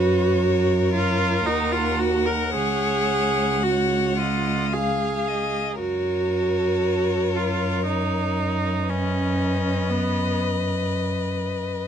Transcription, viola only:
Already playing: F#4
0.94 F4
1.46 D#4
1.72 F4
2.00 F#4
2.26 A#4
2.54 G#4
3.63 F#4
4.18 F4
4.73 G#4
5.80 F#4
7.36 F4
7.87 D#4
8.89 C#4
9.90 B3

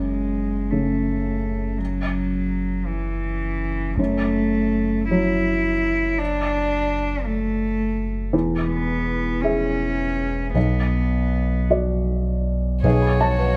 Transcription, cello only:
0.00 G#3
0.70 A3
1.79 F#3
2.86 E3
3.97 A3
5.10 E4
6.18 D4
7.25 A3
8.68 B3
9.41 C#4
10.55 B3
12.84 G#4
13.20 F#4

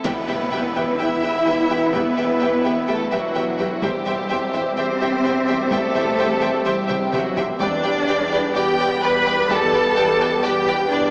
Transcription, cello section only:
0.04 B3
0.98 E4
1.93 B3
2.88 A3
3.11 F#3
3.82 G3
4.77 C4
5.72 A3
6.66 G3
7.14 F#3
7.60 D4
8.55 G4
9.02 B4
9.49 A4
10.43 G4
10.91 D4

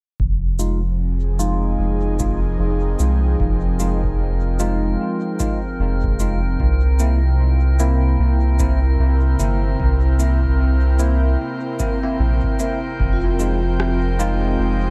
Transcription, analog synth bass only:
0.20 F1
1.79 F1
2.60 F1
3.00 C2
3.40 F1
5.80 F1
6.60 C2
8.20 C2
8.99 C2
9.40 G1
9.80 C2
12.20 A#1
13.00 F1
14.60 F1

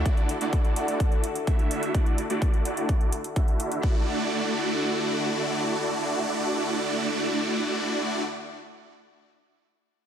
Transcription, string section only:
Already playing: D3 D4 E4 F#4 A4
3.83 D3 D4 E4 F#4 A4

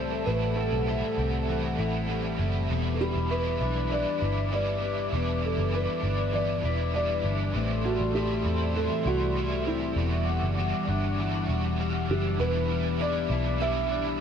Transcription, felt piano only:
Already playing: C5
0.26 B4
0.56 A4
2.94 A4
3.01 G4
3.31 B4
3.92 D5
4.53 D5
5.45 A4
5.75 B4
6.33 D5
6.94 D5
7.85 F#4
8.15 G4
8.77 A4
9.07 F#4
9.67 E4
12.11 G4
12.39 B4
13.01 D5
13.61 E5

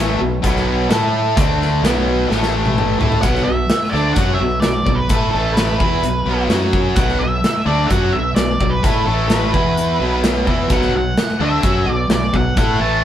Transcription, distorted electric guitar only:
Already playing: A2 E3 A3
0.18 B2 F#3
0.42 B2 F#3 B3
0.89 A3 E4 A4
1.36 D3 A3 D4
1.83 B2 F#3 B3
2.30 A2 E3 A3
2.99 A3 E4 A4
3.21 B2 F#3 B3
3.45 B2 F#3
3.93 D3 A3 D4
4.16 F#3 C#4 F#4
4.39 B2 F#3
4.62 B2 F#3
4.85 B2 F#3
5.09 A3 E4 A4
5.33 A2 E3 A3
5.78 E3 B3 E4
6.01 B2 F#3
6.26 B2 F#3 B3
6.48 F#3 C#4 F#4
6.97 B2 F#3 B3
7.20 B2 F#3
7.66 D3 A3 D4
7.90 F#3 C#4 F#4
8.14 B2 F#3
8.36 B2 F#3
8.61 B2 F#3
8.83 A3 E4 A4
9.06 A2 E3 A3
9.53 E3 B3 E4
10.00 B2 F#3 B3
10.46 E3 B3 E4
10.70 B2 F#3 B3
10.94 B2 F#3
11.40 D3 A3 D4
11.63 F#3 C#4 F#4
11.87 B2 F#3
12.10 B2 F#3
12.33 B2 F#3
12.57 A3 E4 A4
12.81 A2 E3 A3

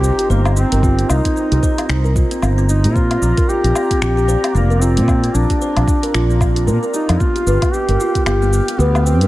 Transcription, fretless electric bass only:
0.30 G1
0.72 G1
1.10 C2
1.52 C2
1.89 C2
2.42 G1
2.84 A#2
3.22 A#1
3.64 A#1
4.02 A#1
4.55 F1
4.97 A#2
5.34 A#1
5.76 A#1
6.14 A#1
6.67 A#2
7.09 F2
7.46 G1
7.88 G1
8.26 G1
8.79 D2
9.21 G2

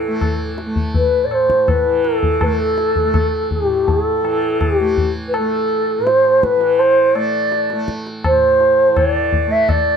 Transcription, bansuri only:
Already playing: A4
0.96 B4
1.25 D5
1.33 C5
1.69 B4
2.16 A4
2.43 A4
3.53 G4
3.90 A4
4.62 G4
5.28 B4
5.35 A4
6.07 C5
6.43 B4
6.79 C5
7.15 D5
8.26 C5
8.98 D5
9.51 E5
9.69 D5

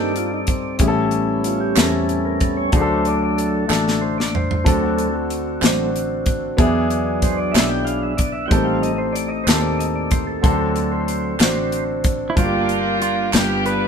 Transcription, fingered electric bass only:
Already playing: G2
0.80 A1
1.77 E2
2.73 D2
3.70 A1
4.66 D2
5.62 A1
6.58 E2
7.55 B1
8.51 A1
9.47 D#2
10.44 D2
11.40 A1
12.37 G1
13.34 G1

